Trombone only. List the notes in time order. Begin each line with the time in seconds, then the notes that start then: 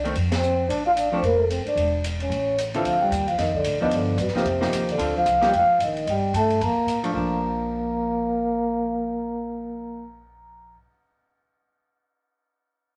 0.32 C4
0.69 D4
0.87 F4
0.97 D4
1.12 C4
1.24 A#3
1.38 A3
1.50 C4
1.66 D4
2.22 C#4
2.75 E3
2.86 F3
3.02 G3
3.29 F3
3.39 D#3
3.55 D3
3.82 D#3
3.94 D3
4.20 B2
4.36 C3
4.91 D3
5.17 F3
5.44 G3
5.56 F3
5.84 D#3
6.09 G3
6.37 A3
6.63 A#3
7.15 A#3